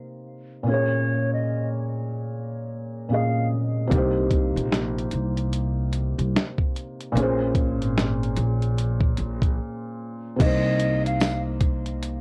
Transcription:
0.00 0.61 C3 medium
0.00 0.63 A#3 medium
0.00 0.64 D#4 medium
0.00 0.65 G4 medium
0.00 0.66 C5 medium
0.63 3.04 A#2 medium
0.63 3.06 A#3 medium
0.68 3.07 C#4 medium
0.68 3.08 G#4 medium
0.68 1.35 C#5 medium
0.74 3.10 C#5 medium
1.33 1.69 D#5 medium
3.09 3.91 A#2 soft
3.09 3.88 A#3 soft
3.09 3.92 C#4 soft
3.09 3.93 G#4 soft
3.09 3.48 F5 medium
3.14 3.93 D#5 medium
3.88 7.10 C3 medium
3.88 7.11 A#3 medium
3.92 4.53 C2 loud
3.92 7.12 D#4 medium
3.92 7.14 G4 medium
3.92 kick loud
3.92 closed hi-hat medium
3.98 7.15 C5 medium
4.31 kick medium
4.31 closed hi-hat medium
4.56 5.09 A#1 medium
4.56 closed hi-hat soft
4.72 snare loud
4.72 closed hi-hat medium
4.98 closed hi-hat soft
5.11 6.15 C2 medium
5.11 closed hi-hat medium
5.37 closed hi-hat soft
5.53 closed hi-hat medium
5.93 closed hi-hat medium
6.18 6.34 C2 medium
6.18 closed hi-hat soft
6.36 snare loud
6.36 closed hi-hat medium
6.58 kick medium
6.76 closed hi-hat medium
7.01 closed hi-hat soft
7.12 7.80 A#1 medium
7.12 10.34 A#2 medium
7.12 10.35 A#3 medium
7.17 10.37 C#4 medium
7.17 10.38 G#4 medium
7.17 closed hi-hat medium
7.23 10.40 C5 medium
7.55 kick medium
7.55 closed hi-hat medium
7.80 8.34 G#1 medium
7.80 closed hi-hat soft
7.97 snare loud
7.97 closed hi-hat medium
8.23 closed hi-hat soft
8.36 9.14 A#1 medium
8.36 closed hi-hat medium
8.62 closed hi-hat soft
8.78 closed hi-hat medium
9.01 kick medium
9.18 9.57 A#1 medium
9.18 closed hi-hat medium
9.42 kick medium
9.42 closed hi-hat soft
10.36 12.21 C3 medium
10.36 12.21 A#3 medium
10.36 kick loud
10.36 crash loud
10.40 12.21 C2 loud
10.40 12.21 D#4 medium
10.40 12.21 G4 medium
10.40 11.08 D#5 loud
10.40 closed hi-hat medium
10.46 12.21 C5 medium
10.80 closed hi-hat medium
11.06 11.42 F5 medium
11.06 closed hi-hat medium
11.20 snare loud
11.20 closed hi-hat medium
11.20 tambourine medium
11.61 kick medium
11.61 closed hi-hat medium
11.86 closed hi-hat soft
12.02 closed hi-hat medium

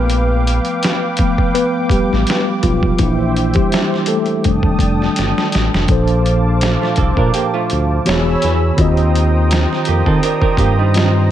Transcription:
0.00 0.59 A#1 loud
0.00 1.18 F3 medium
0.00 1.18 A3 soft
0.00 1.18 B3 medium
0.00 1.53 B4 medium
0.00 2.96 B4 medium
0.00 2.96 F5 medium
0.00 2.96 G5 medium
0.00 4.40 D6 medium
0.10 closed hi-hat medium
0.47 closed hi-hat medium
0.65 closed hi-hat soft
0.83 snare loud
0.83 closed hi-hat medium
1.17 1.51 F3 soft
1.17 1.51 A3 soft
1.17 1.52 B3 medium
1.17 kick medium
1.17 closed hi-hat medium
1.38 kick medium
1.55 1.71 B3 medium
1.55 1.71 B4 loud
1.55 closed hi-hat medium
1.90 1.98 A1 soft
1.90 2.60 G3 medium
1.90 2.59 G4 medium
1.90 kick medium
1.90 closed hi-hat medium
2.13 2.25 A1 medium
2.13 snare soft
2.27 snare loud
2.27 closed hi-hat medium
2.63 2.92 B1 medium
2.63 2.97 F3 medium
2.63 3.00 F4 medium
2.63 kick medium
2.63 closed hi-hat medium
2.83 kick medium
2.98 3.56 A#1 loud
2.98 3.51 E3 medium
2.98 3.48 A#3 soft
2.98 3.48 D4 medium
2.98 3.56 E4 medium
2.98 4.42 C5 medium
2.98 4.42 E5 medium
2.98 4.42 G5 medium
2.98 kick loud
2.98 closed hi-hat medium
3.36 closed hi-hat medium
3.54 4.05 G3 medium
3.54 4.09 G4 medium
3.54 kick medium
3.54 closed hi-hat soft
3.72 snare loud
3.72 closed hi-hat medium
3.94 snare soft
4.06 4.44 A3 medium
4.06 4.76 A4 medium
4.06 closed hi-hat medium
4.26 closed hi-hat soft
4.44 4.74 F1 loud
4.44 4.93 D#3 medium
4.44 4.93 G3 soft
4.44 4.93 A3 soft
4.44 5.87 D4 medium
4.44 4.93 D4 medium
4.44 5.87 G5 medium
4.44 5.87 A5 medium
4.44 5.87 D#6 medium
4.44 kick medium
4.44 closed hi-hat medium
4.63 kick medium
4.79 5.08 F1 medium
4.79 kick medium
4.79 closed hi-hat medium
5.02 snare soft
5.16 5.33 G1 loud
5.16 snare medium
5.16 closed hi-hat medium
5.38 snare medium
5.52 5.69 A1 medium
5.52 snare medium
5.52 closed hi-hat medium
5.74 5.86 F1 medium
5.74 snare medium
5.87 6.77 A#1 loud
5.87 8.01 A#2 medium
5.87 8.01 F3 medium
5.87 8.02 D4 medium
5.87 8.02 A4 medium
5.87 8.03 C5 medium
5.87 8.03 F5 medium
5.87 8.03 A5 medium
5.87 8.03 D6 medium
5.87 kick loud
5.87 closed hi-hat medium
5.92 8.03 C5 medium
6.07 closed hi-hat soft
6.26 closed hi-hat medium
6.61 snare loud
6.61 closed hi-hat medium
6.82 6.97 A3 medium
6.82 6.97 F4 medium
6.82 snare soft
6.96 7.13 C2 medium
6.96 7.16 C4 medium
6.96 7.16 A4 medium
6.96 kick medium
6.96 closed hi-hat medium
7.17 7.31 A#2 medium
7.17 7.33 D4 medium
7.17 7.33 A#4 medium
7.17 kick medium
7.34 7.52 A#3 medium
7.34 7.52 G4 medium
7.34 closed hi-hat medium
7.54 8.04 A3 medium
7.54 8.03 F4 medium
7.70 7.99 D2 medium
7.70 closed hi-hat medium
8.05 8.35 E1 loud
8.05 8.77 E3 medium
8.05 8.78 B3 medium
8.05 8.78 F#4 medium
8.05 8.13 G4 medium
8.05 8.77 C#5 medium
8.05 8.79 C#5 medium
8.05 8.77 G#5 medium
8.05 8.77 B5 medium
8.05 8.77 E6 medium
8.05 closed hi-hat medium
8.09 snare loud
8.13 8.81 G#4 medium
8.42 8.71 E2 medium
8.42 snare soft
8.42 closed hi-hat medium
8.76 9.66 D#2 loud
8.76 10.90 D#3 medium
8.76 10.90 C4 medium
8.76 10.91 F4 medium
8.76 8.86 F#4 medium
8.76 11.31 C5 medium
8.76 11.31 G5 medium
8.76 11.31 A#5 medium
8.76 11.31 D#6 medium
8.76 kick loud
8.76 closed hi-hat medium
8.81 10.92 D#5 medium
8.86 10.95 G4 medium
8.97 closed hi-hat soft
9.15 closed hi-hat medium
9.51 snare loud
9.51 closed hi-hat medium
9.73 snare soft
9.85 10.03 F2 medium
9.85 10.05 A#3 medium
9.85 10.05 G4 medium
9.85 closed hi-hat medium
10.06 10.20 D#3 loud
10.06 10.22 C4 medium
10.06 10.22 A4 medium
10.06 kick medium
10.23 10.41 D4 medium
10.23 10.40 A#4 medium
10.23 closed hi-hat medium
10.42 10.58 D4 medium
10.42 10.58 A#4 medium
10.42 kick medium
10.57 11.31 G2 medium
10.57 10.77 A#3 medium
10.57 10.77 G4 medium
10.57 kick loud
10.57 closed hi-hat medium
10.79 11.31 G3 medium
10.79 11.31 D#4 medium
10.94 11.31 D#3 medium
10.94 11.31 C4 soft
10.94 11.31 F4 medium
10.94 11.31 G4 medium
10.94 11.31 D#5 medium
10.94 snare loud
10.94 closed hi-hat medium

